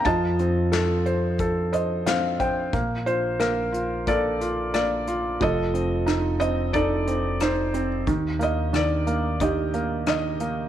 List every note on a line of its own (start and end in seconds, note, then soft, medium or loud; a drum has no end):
0.05 2.69 F2 medium
0.05 2.70 F3 medium
0.05 1.35 D#5 medium
0.05 1.35 A5 medium
0.05 kick medium
0.05 closed hi-hat medium
0.39 1.69 C4 soft
0.39 closed hi-hat soft
0.72 1.39 A4 soft
0.72 snare medium
0.72 closed hi-hat medium
1.06 1.71 C5 medium
1.06 closed hi-hat soft
1.39 2.70 A4 medium
1.39 kick medium
1.39 closed hi-hat medium
1.73 2.38 C5 soft
1.73 2.04 D#5 medium
1.73 closed hi-hat soft
2.06 2.72 C4 soft
2.06 2.38 F5 medium
2.06 snare medium
2.06 closed hi-hat medium
2.40 2.72 C5 soft
2.40 2.71 G5 medium
2.40 kick medium
2.40 closed hi-hat soft
2.73 5.37 A#1 medium
2.73 3.38 A#3 medium
2.73 kick medium
2.73 closed hi-hat medium
3.06 3.71 F4 soft
3.06 3.41 C5 medium
3.06 closed hi-hat soft
3.40 4.06 A#3 soft
3.40 4.09 A#4 medium
3.40 cross-stick medium
3.40 closed hi-hat medium
3.72 4.39 F4 soft
3.72 closed hi-hat soft
4.07 4.73 A#3 soft
4.07 5.38 A4 soft
4.07 4.72 D5 medium
4.07 kick medium
4.07 closed hi-hat medium
4.41 5.06 F4 soft
4.41 closed hi-hat soft
4.74 5.39 A#3 soft
4.74 5.43 D5 medium
4.74 cross-stick medium
4.74 closed hi-hat medium
5.07 5.40 F4 soft
5.07 closed hi-hat soft
5.40 8.03 F1 medium
5.40 8.03 F3 medium
5.40 6.71 A4 medium
5.40 6.04 D#5 medium
5.40 kick medium
5.40 closed hi-hat soft
5.74 6.39 C4 soft
5.74 closed hi-hat soft
6.06 6.73 D#4 medium
6.06 cross-stick medium
6.06 closed hi-hat soft
6.40 7.06 C4 soft
6.40 6.75 D#5 medium
6.40 closed hi-hat soft
6.73 7.39 D#4 soft
6.73 8.04 A4 medium
6.73 7.36 D5 medium
6.73 kick medium
6.73 closed hi-hat medium
7.07 7.72 C4 soft
7.07 closed hi-hat soft
7.40 8.05 D#4 soft
7.40 7.88 C5 medium
7.40 cross-stick medium
7.40 closed hi-hat medium
7.74 8.06 C4 medium
7.74 closed hi-hat soft
8.07 10.69 D#2 medium
8.07 8.71 D#3 medium
8.07 kick medium
8.07 closed hi-hat medium
8.39 9.05 A#3 soft
8.39 8.73 D#5 medium
8.39 closed hi-hat soft
8.73 9.40 D#3 medium
8.73 9.37 D5 medium
8.73 cross-stick medium
8.73 closed hi-hat medium
9.07 9.72 A#3 medium
9.07 closed hi-hat soft
9.40 10.05 D#3 medium
9.40 10.69 G4 medium
9.40 10.07 D#5 medium
9.40 kick medium
9.40 closed hi-hat medium
9.74 10.39 A#3 soft
9.74 closed hi-hat soft
10.06 10.69 D#3 soft
10.06 10.69 D#5 medium
10.06 cross-stick medium
10.06 closed hi-hat medium
10.40 10.69 A#3 soft
10.40 closed hi-hat soft